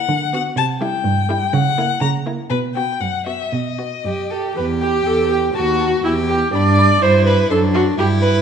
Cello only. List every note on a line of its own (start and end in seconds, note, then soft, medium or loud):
0.09 0.47 D3 medium
0.56 0.94 C3 medium
1.04 1.43 G2 medium
1.53 1.92 C#3 medium
2.02 2.40 C#3 medium
2.51 2.90 B2 medium
3.01 3.42 F#2 medium
3.53 3.94 B2 medium
4.05 4.46 F#2 soft
4.57 5.00 E2 medium
5.06 5.50 E2 soft
5.56 5.99 D#2 medium
6.04 6.48 E2 medium
6.54 6.96 G2 medium
7.02 7.45 G2 medium
7.50 7.93 F#2 medium
7.98 8.40 G2 medium